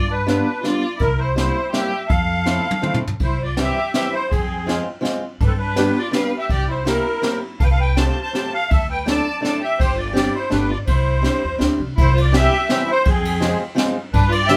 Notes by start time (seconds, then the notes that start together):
Already playing: G2 D5
0.11 D4 B4
0.26 G3 B3 D4 F4 B4, snare, closed hi-hat
0.61 G3 B3 D4 F4 D5, snare, closed hi-hat
0.98 C2 E4 A#4, kick, closed hi-hat
1.17 E4 C5
1.36 G3 A#3 C4 E4 C5, snare, closed hi-hat
1.72 G3 A#3 C4 E4 G4 E5, snare, closed hi-hat
2.08 F2 A4 F5, kick, closed hi-hat
2.46 F3 A3 C4 E4, snare
2.71 high tom
2.82 F3 A3 C4 E4, mid tom
2.94 mid tom
3.08 floor tom
3.19 C2 C5, kick, ride
3.24 E4
3.43 F4 D5
3.57 E3 G3 C4 E4 G4 E5, snare, ride
3.94 E3 G3 C4 E4 G4 E5, snare, ride
4.13 E4 C5
4.29 F2 C4 G#4, kick, ride
4.66 F3 G#3 C4 F4, snare, ride
5.01 F3 G#3 C4 F4, snare, ride
5.40 G2 D4 B4, kick, ride
5.46 C4 A4
5.58 D4 B4
5.76 G3 B3 D4 G4, snare, ride
5.97 F4 D5
6.11 G3 B3 D4 G4 B4 F5, snare, ride
6.38 G4 E5
6.50 C2 G4 D5, kick, ride
6.69 E4 C5
6.85 A#3 C4 E4 G4 A#4, snare, ride
7.22 A#3 C4 E4 G4, snare, ride
7.60 C2 A4 F5 G5, kick, ride
7.64 B4
7.71 A4 F5
7.79 B4 G5
7.97 A3 C4 F4 G4 C5 A5, snare, ride
8.09 C5 A5
8.22 C5 A5
8.33 A3 C4 F4 G4 C5 A5, snare, ride
8.53 A4 F5
8.69 D2 A4 E5, kick, ride
8.90 B4 G5
9.06 A3 D4 E4 A4 D5 A5, snare, ride
9.41 A3 D4 E4 A4 D5 A5, snare, ride
9.61 G4 E5
9.79 G1 G4 C5, kick, ride
9.97 F4 D5
10.13 G3 C4 D4 G4 D5, snare, ride
10.32 E4 C5
10.50 G1 A3 B3 D4 G4 B4, snare, ride
10.69 F4 D5
10.87 C2 E4 C5, kick, ride
11.21 C4 D4 E4 G4, snare, ride
11.44 E2
11.58 D2 C4 D4 E4 G4, snare, ride
11.80 C2
11.97 C2 E4 C5, kick, ride
12.15 F4, ride
12.20 D5
12.32 E3 G3 C4 E4 G4 E5, snare, ride
12.67 E3 G3 C4 E4 G4, snare, ride
12.72 E5
12.86 E4
12.91 C5
13.02 C4, ride
13.06 F2 G#4, kick
13.25 ride
13.40 F3 G#3 C4 F4 G#4, snare, ride
13.75 F3 G#3 C4 F4 G#4, snare, ride
14.13 G2 D4 B4, kick, ride
14.29 F4 D5, ride
14.45 D3 G4 E5
14.49 G3 B3 D4 G4, snare, ride